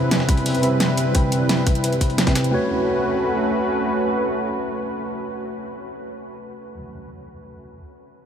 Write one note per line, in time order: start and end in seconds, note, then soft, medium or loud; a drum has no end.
0.00 0.61 C3 medium
0.00 2.50 G3 medium
0.00 0.61 C4 medium
0.00 2.50 C4 medium
0.00 2.50 E4 medium
0.00 0.61 B4 medium
0.00 2.50 B4 medium
0.00 0.62 E5 medium
0.11 snare loud
0.11 closed hi-hat medium
0.20 snare medium
0.29 kick medium
0.29 closed hi-hat medium
0.37 closed hi-hat soft
0.46 closed hi-hat medium
0.46 open hi-hat medium
0.55 closed hi-hat soft
0.62 1.12 C3 medium
0.62 1.13 C4 medium
0.62 1.13 B4 medium
0.62 1.13 E5 medium
0.62 closed hi-hat medium
0.80 snare loud
0.80 closed hi-hat medium
0.97 closed hi-hat medium
1.14 1.98 C3 medium
1.14 1.99 C4 medium
1.14 1.99 B4 medium
1.14 1.99 G5 medium
1.14 kick loud
1.14 closed hi-hat medium
1.32 closed hi-hat medium
1.49 snare loud
1.49 closed hi-hat medium
1.67 kick medium
1.67 closed hi-hat medium
1.75 closed hi-hat soft
1.84 closed hi-hat medium
1.93 closed hi-hat soft
2.01 kick medium
2.01 closed hi-hat medium
2.10 closed hi-hat soft
2.18 snare medium
2.18 snare loud
2.18 closed hi-hat medium
2.27 2.50 C3 medium
2.27 2.51 C4 medium
2.27 2.51 B4 medium
2.27 2.51 G5 medium
2.27 kick medium
2.27 snare medium
2.27 snare soft
2.27 closed hi-hat medium
2.35 snare medium
2.35 closed hi-hat medium
2.44 closed hi-hat soft
2.51 6.74 A3 medium
2.51 6.05 A3 medium
2.51 6.05 C#4 medium
2.51 6.74 F#4 medium
2.51 6.05 F#4 medium
2.51 6.05 B4 medium
2.51 6.75 B4 medium
2.51 6.75 C#5 medium